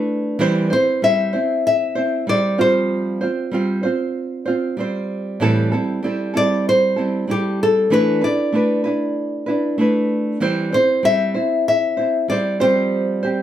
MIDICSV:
0, 0, Header, 1, 3, 480
1, 0, Start_track
1, 0, Tempo, 626305
1, 307, Time_signature, 4, 2, 24, 8
1, 10289, End_track
2, 0, Start_track
2, 0, Title_t, "Nylon-string guitar"
2, 0, Program_c, 0, 24
2, 558, Note_on_c, 0, 72, 86
2, 792, Note_off_c, 0, 72, 0
2, 796, Note_on_c, 0, 76, 101
2, 1269, Note_off_c, 0, 76, 0
2, 1278, Note_on_c, 0, 76, 94
2, 1755, Note_off_c, 0, 76, 0
2, 1758, Note_on_c, 0, 74, 91
2, 1996, Note_off_c, 0, 74, 0
2, 1999, Note_on_c, 0, 72, 89
2, 3403, Note_off_c, 0, 72, 0
2, 4881, Note_on_c, 0, 74, 101
2, 5121, Note_off_c, 0, 74, 0
2, 5126, Note_on_c, 0, 72, 97
2, 5604, Note_on_c, 0, 67, 82
2, 5610, Note_off_c, 0, 72, 0
2, 5842, Note_off_c, 0, 67, 0
2, 5847, Note_on_c, 0, 69, 93
2, 6060, Note_off_c, 0, 69, 0
2, 6082, Note_on_c, 0, 71, 90
2, 6313, Note_off_c, 0, 71, 0
2, 6316, Note_on_c, 0, 74, 91
2, 7720, Note_off_c, 0, 74, 0
2, 8233, Note_on_c, 0, 72, 86
2, 8467, Note_off_c, 0, 72, 0
2, 8470, Note_on_c, 0, 76, 101
2, 8944, Note_off_c, 0, 76, 0
2, 8953, Note_on_c, 0, 76, 94
2, 9421, Note_off_c, 0, 76, 0
2, 9424, Note_on_c, 0, 74, 90
2, 9664, Note_off_c, 0, 74, 0
2, 9667, Note_on_c, 0, 72, 94
2, 10289, Note_off_c, 0, 72, 0
2, 10289, End_track
3, 0, Start_track
3, 0, Title_t, "Nylon-string guitar"
3, 0, Program_c, 1, 24
3, 0, Note_on_c, 1, 57, 62
3, 0, Note_on_c, 1, 62, 65
3, 0, Note_on_c, 1, 64, 72
3, 0, Note_on_c, 1, 71, 74
3, 298, Note_on_c, 1, 52, 92
3, 300, Note_off_c, 1, 57, 0
3, 302, Note_off_c, 1, 62, 0
3, 303, Note_on_c, 1, 55, 83
3, 305, Note_on_c, 1, 60, 101
3, 307, Note_off_c, 1, 64, 0
3, 310, Note_on_c, 1, 64, 93
3, 312, Note_off_c, 1, 71, 0
3, 315, Note_on_c, 1, 72, 99
3, 527, Note_off_c, 1, 72, 0
3, 536, Note_on_c, 1, 72, 53
3, 538, Note_off_c, 1, 64, 0
3, 543, Note_off_c, 1, 52, 0
3, 545, Note_off_c, 1, 55, 0
3, 547, Note_off_c, 1, 60, 0
3, 547, Note_on_c, 1, 64, 45
3, 558, Note_on_c, 1, 60, 49
3, 781, Note_off_c, 1, 60, 0
3, 782, Note_off_c, 1, 72, 0
3, 782, Note_on_c, 1, 55, 56
3, 787, Note_off_c, 1, 64, 0
3, 790, Note_on_c, 1, 60, 57
3, 797, Note_on_c, 1, 64, 71
3, 805, Note_on_c, 1, 72, 61
3, 1009, Note_off_c, 1, 72, 0
3, 1018, Note_on_c, 1, 72, 53
3, 1020, Note_off_c, 1, 64, 0
3, 1025, Note_off_c, 1, 55, 0
3, 1029, Note_off_c, 1, 60, 0
3, 1029, Note_on_c, 1, 64, 46
3, 1039, Note_on_c, 1, 60, 43
3, 1494, Note_off_c, 1, 72, 0
3, 1497, Note_on_c, 1, 72, 60
3, 1500, Note_off_c, 1, 64, 0
3, 1509, Note_on_c, 1, 64, 47
3, 1518, Note_off_c, 1, 60, 0
3, 1521, Note_on_c, 1, 60, 43
3, 1738, Note_off_c, 1, 60, 0
3, 1739, Note_on_c, 1, 55, 64
3, 1742, Note_off_c, 1, 72, 0
3, 1745, Note_off_c, 1, 64, 0
3, 1747, Note_on_c, 1, 60, 58
3, 1755, Note_on_c, 1, 64, 61
3, 1759, Note_on_c, 1, 72, 67
3, 1969, Note_off_c, 1, 72, 0
3, 1976, Note_off_c, 1, 60, 0
3, 1978, Note_on_c, 1, 72, 67
3, 1980, Note_off_c, 1, 64, 0
3, 1983, Note_off_c, 1, 55, 0
3, 1983, Note_on_c, 1, 65, 68
3, 1986, Note_on_c, 1, 60, 60
3, 1992, Note_on_c, 1, 55, 58
3, 1996, Note_on_c, 1, 53, 55
3, 2456, Note_off_c, 1, 72, 0
3, 2459, Note_on_c, 1, 72, 56
3, 2463, Note_off_c, 1, 65, 0
3, 2472, Note_off_c, 1, 53, 0
3, 2472, Note_on_c, 1, 65, 50
3, 2478, Note_off_c, 1, 60, 0
3, 2481, Note_on_c, 1, 60, 43
3, 2495, Note_off_c, 1, 55, 0
3, 2694, Note_on_c, 1, 55, 62
3, 2695, Note_off_c, 1, 60, 0
3, 2703, Note_off_c, 1, 65, 0
3, 2703, Note_off_c, 1, 72, 0
3, 2704, Note_on_c, 1, 60, 72
3, 2712, Note_on_c, 1, 65, 69
3, 2717, Note_on_c, 1, 72, 73
3, 2926, Note_off_c, 1, 72, 0
3, 2935, Note_on_c, 1, 72, 64
3, 2941, Note_off_c, 1, 55, 0
3, 2941, Note_off_c, 1, 65, 0
3, 2946, Note_off_c, 1, 60, 0
3, 2950, Note_on_c, 1, 65, 51
3, 2957, Note_on_c, 1, 60, 51
3, 3411, Note_off_c, 1, 72, 0
3, 3414, Note_on_c, 1, 72, 58
3, 3421, Note_off_c, 1, 65, 0
3, 3430, Note_on_c, 1, 65, 56
3, 3438, Note_off_c, 1, 60, 0
3, 3441, Note_on_c, 1, 60, 47
3, 3654, Note_on_c, 1, 55, 61
3, 3657, Note_off_c, 1, 60, 0
3, 3661, Note_off_c, 1, 72, 0
3, 3662, Note_off_c, 1, 65, 0
3, 3667, Note_on_c, 1, 60, 61
3, 3671, Note_on_c, 1, 65, 62
3, 3681, Note_on_c, 1, 72, 70
3, 4137, Note_on_c, 1, 45, 81
3, 4143, Note_on_c, 1, 52, 80
3, 4144, Note_off_c, 1, 55, 0
3, 4147, Note_off_c, 1, 60, 0
3, 4147, Note_on_c, 1, 55, 91
3, 4149, Note_off_c, 1, 65, 0
3, 4150, Note_on_c, 1, 60, 96
3, 4152, Note_off_c, 1, 72, 0
3, 4153, Note_on_c, 1, 64, 90
3, 4155, Note_on_c, 1, 69, 95
3, 4372, Note_off_c, 1, 69, 0
3, 4381, Note_on_c, 1, 69, 55
3, 4382, Note_off_c, 1, 45, 0
3, 4382, Note_off_c, 1, 64, 0
3, 4385, Note_off_c, 1, 52, 0
3, 4387, Note_off_c, 1, 55, 0
3, 4389, Note_off_c, 1, 60, 0
3, 4392, Note_on_c, 1, 64, 57
3, 4398, Note_on_c, 1, 60, 52
3, 4404, Note_on_c, 1, 55, 47
3, 4609, Note_off_c, 1, 55, 0
3, 4618, Note_on_c, 1, 55, 64
3, 4619, Note_off_c, 1, 60, 0
3, 4623, Note_off_c, 1, 64, 0
3, 4624, Note_off_c, 1, 69, 0
3, 4628, Note_on_c, 1, 60, 71
3, 4633, Note_on_c, 1, 64, 65
3, 4642, Note_on_c, 1, 69, 67
3, 4847, Note_off_c, 1, 69, 0
3, 4856, Note_on_c, 1, 69, 54
3, 4858, Note_off_c, 1, 64, 0
3, 4862, Note_off_c, 1, 55, 0
3, 4863, Note_off_c, 1, 60, 0
3, 4867, Note_on_c, 1, 64, 49
3, 4873, Note_on_c, 1, 60, 46
3, 4883, Note_on_c, 1, 55, 44
3, 5333, Note_off_c, 1, 69, 0
3, 5336, Note_on_c, 1, 69, 46
3, 5344, Note_off_c, 1, 64, 0
3, 5346, Note_off_c, 1, 60, 0
3, 5347, Note_on_c, 1, 64, 50
3, 5349, Note_off_c, 1, 55, 0
3, 5355, Note_on_c, 1, 60, 45
3, 5358, Note_on_c, 1, 55, 43
3, 5566, Note_off_c, 1, 55, 0
3, 5575, Note_off_c, 1, 60, 0
3, 5576, Note_on_c, 1, 55, 60
3, 5581, Note_off_c, 1, 69, 0
3, 5582, Note_off_c, 1, 64, 0
3, 5584, Note_on_c, 1, 60, 59
3, 5591, Note_on_c, 1, 64, 64
3, 5596, Note_on_c, 1, 69, 64
3, 6056, Note_on_c, 1, 52, 75
3, 6058, Note_off_c, 1, 55, 0
3, 6061, Note_on_c, 1, 57, 75
3, 6063, Note_off_c, 1, 60, 0
3, 6066, Note_off_c, 1, 64, 0
3, 6066, Note_on_c, 1, 62, 79
3, 6068, Note_off_c, 1, 69, 0
3, 6069, Note_on_c, 1, 64, 85
3, 6071, Note_on_c, 1, 71, 80
3, 6285, Note_off_c, 1, 71, 0
3, 6294, Note_on_c, 1, 71, 52
3, 6301, Note_off_c, 1, 52, 0
3, 6301, Note_off_c, 1, 64, 0
3, 6303, Note_off_c, 1, 57, 0
3, 6306, Note_off_c, 1, 62, 0
3, 6311, Note_on_c, 1, 64, 49
3, 6320, Note_on_c, 1, 62, 43
3, 6531, Note_off_c, 1, 62, 0
3, 6533, Note_on_c, 1, 57, 60
3, 6538, Note_off_c, 1, 64, 0
3, 6540, Note_off_c, 1, 71, 0
3, 6540, Note_on_c, 1, 62, 65
3, 6547, Note_on_c, 1, 64, 60
3, 6556, Note_on_c, 1, 71, 68
3, 6764, Note_off_c, 1, 71, 0
3, 6774, Note_on_c, 1, 71, 61
3, 6776, Note_off_c, 1, 64, 0
3, 6779, Note_off_c, 1, 57, 0
3, 6783, Note_off_c, 1, 62, 0
3, 6786, Note_on_c, 1, 64, 54
3, 6798, Note_on_c, 1, 62, 46
3, 7243, Note_off_c, 1, 71, 0
3, 7252, Note_on_c, 1, 71, 52
3, 7262, Note_off_c, 1, 64, 0
3, 7265, Note_on_c, 1, 64, 56
3, 7267, Note_off_c, 1, 62, 0
3, 7277, Note_on_c, 1, 62, 50
3, 7493, Note_off_c, 1, 62, 0
3, 7493, Note_on_c, 1, 57, 58
3, 7498, Note_off_c, 1, 71, 0
3, 7500, Note_off_c, 1, 64, 0
3, 7502, Note_on_c, 1, 62, 65
3, 7509, Note_on_c, 1, 64, 69
3, 7517, Note_on_c, 1, 71, 65
3, 7973, Note_on_c, 1, 52, 78
3, 7975, Note_off_c, 1, 57, 0
3, 7978, Note_on_c, 1, 55, 82
3, 7979, Note_off_c, 1, 62, 0
3, 7980, Note_off_c, 1, 64, 0
3, 7982, Note_on_c, 1, 60, 95
3, 7983, Note_on_c, 1, 64, 92
3, 7984, Note_off_c, 1, 71, 0
3, 7987, Note_on_c, 1, 72, 89
3, 8210, Note_off_c, 1, 72, 0
3, 8219, Note_off_c, 1, 52, 0
3, 8219, Note_on_c, 1, 72, 58
3, 8221, Note_off_c, 1, 55, 0
3, 8222, Note_off_c, 1, 64, 0
3, 8224, Note_off_c, 1, 60, 0
3, 8231, Note_on_c, 1, 64, 49
3, 8243, Note_on_c, 1, 60, 41
3, 8452, Note_off_c, 1, 60, 0
3, 8452, Note_on_c, 1, 55, 62
3, 8460, Note_off_c, 1, 64, 0
3, 8461, Note_on_c, 1, 60, 62
3, 8462, Note_off_c, 1, 72, 0
3, 8469, Note_on_c, 1, 64, 62
3, 8478, Note_on_c, 1, 72, 63
3, 8685, Note_off_c, 1, 72, 0
3, 8694, Note_on_c, 1, 72, 52
3, 8698, Note_off_c, 1, 55, 0
3, 8698, Note_off_c, 1, 64, 0
3, 8703, Note_off_c, 1, 60, 0
3, 8707, Note_on_c, 1, 64, 51
3, 8718, Note_on_c, 1, 60, 46
3, 9170, Note_off_c, 1, 72, 0
3, 9173, Note_on_c, 1, 72, 50
3, 9178, Note_off_c, 1, 64, 0
3, 9187, Note_on_c, 1, 64, 45
3, 9195, Note_off_c, 1, 60, 0
3, 9198, Note_on_c, 1, 60, 39
3, 9413, Note_on_c, 1, 55, 56
3, 9414, Note_off_c, 1, 60, 0
3, 9419, Note_off_c, 1, 72, 0
3, 9422, Note_off_c, 1, 64, 0
3, 9423, Note_on_c, 1, 60, 57
3, 9431, Note_on_c, 1, 64, 59
3, 9438, Note_on_c, 1, 72, 64
3, 9647, Note_off_c, 1, 72, 0
3, 9656, Note_off_c, 1, 60, 0
3, 9656, Note_on_c, 1, 72, 66
3, 9658, Note_off_c, 1, 64, 0
3, 9659, Note_off_c, 1, 55, 0
3, 9661, Note_on_c, 1, 67, 56
3, 9665, Note_on_c, 1, 60, 63
3, 9670, Note_on_c, 1, 55, 59
3, 9673, Note_on_c, 1, 53, 55
3, 10134, Note_off_c, 1, 72, 0
3, 10137, Note_on_c, 1, 72, 50
3, 10148, Note_off_c, 1, 67, 0
3, 10149, Note_off_c, 1, 53, 0
3, 10151, Note_on_c, 1, 67, 46
3, 10159, Note_off_c, 1, 60, 0
3, 10162, Note_on_c, 1, 60, 42
3, 10289, Note_off_c, 1, 55, 0
3, 10289, Note_off_c, 1, 60, 0
3, 10289, Note_off_c, 1, 67, 0
3, 10289, Note_off_c, 1, 72, 0
3, 10289, End_track
0, 0, End_of_file